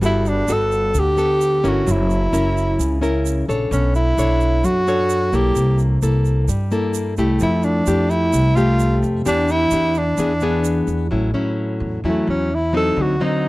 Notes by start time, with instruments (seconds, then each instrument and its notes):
0.01 upright bass G1, nylon-string guitar G3 B3 F#4 A4, tenor saxophone E4, shaker
0.26 tenor saxophone D4, shaker
0.48 upright bass G1, nylon-string guitar B3 F#4 A4, shaker
0.53 tenor saxophone A4
0.72 shaker
0.94 upright bass D2, nylon-string guitar D3, shaker
0.99 tenor saxophone G4
1.17 nylon-string guitar B3 A4, shaker
1.41 shaker
1.64 upright bass G1, nylon-string guitar C#4 E4 A#4, shaker
1.68 tenor saxophone F#4
1.87 upright bass F#1, nylon-string guitar F#3, shaker
1.91 tenor saxophone E4
2.10 shaker
2.33 upright bass F#1, nylon-string guitar C#4 E4 A#4, shaker
2.57 shaker
2.79 upright bass C#2, nylon-string guitar C#3, shaker
3.01 nylon-string guitar C#4 E4 A#4, shaker
3.26 shaker
3.48 upright bass A#1, nylon-string guitar D4 A4 C#5, shaker
3.71 upright bass B1, nylon-string guitar B3, tenor saxophone C#4, shaker
3.95 tenor saxophone E4, shaker
4.17 upright bass B1, nylon-string guitar D4 A4 C#5, shaker
4.41 shaker
4.64 upright bass F#2, nylon-string guitar F#3, tenor saxophone F#4, shaker
4.87 nylon-string guitar D4 A4 C#5, shaker
5.10 shaker
5.33 upright bass B1, nylon-string guitar A#3 E4 A4, tenor saxophone G4, shaker
5.56 upright bass C2, nylon-string guitar C3, shaker
5.79 shaker
6.02 upright bass C2, nylon-string guitar A#3 E4 A4, shaker
6.25 shaker
6.48 upright bass G2, nylon-string guitar G3, shaker
6.71 nylon-string guitar A#3 E4 A4, shaker
6.94 shaker
7.17 upright bass C2, nylon-string guitar A3 E4 G4, shaker
7.40 upright bass F2, nylon-string guitar F3, tenor saxophone E4, shaker
7.63 tenor saxophone D4, shaker
7.86 upright bass F2, nylon-string guitar A3 E4 G4, shaker
8.10 tenor saxophone E4, shaker
8.33 upright bass C2, nylon-string guitar C3, shaker
8.55 nylon-string guitar A3 G4, tenor saxophone F4, shaker
8.79 shaker
9.02 upright bass F2, shaker
9.25 upright bass E2, nylon-string guitar E3 B3 D4 G4, tenor saxophone D4, shaker
9.48 tenor saxophone E4, shaker
9.71 upright bass E2, nylon-string guitar B3 D4 G4, shaker
9.94 tenor saxophone D4, shaker
10.18 upright bass E2, nylon-string guitar E3 B3 D4 G#4, shaker
10.40 nylon-string guitar B3 D4 G#4, shaker
10.64 shaker
10.87 upright bass E2, shaker
11.11 upright bass A1, nylon-string guitar A2 F#3 C#4 E4
11.34 nylon-string guitar F#3 C#4 E4
11.80 upright bass E2
12.04 upright bass E2, nylon-string guitar E3 F#3 C#4 E4
12.09 tenor saxophone A3
12.27 upright bass E2, tenor saxophone C#4
12.55 tenor saxophone E4
12.73 nylon-string guitar F#3 C4 D#4, tenor saxophone A4
12.96 upright bass D2, nylon-string guitar D3
13.02 tenor saxophone F#4
13.20 nylon-string guitar F#3 C4 D#4, tenor saxophone D#4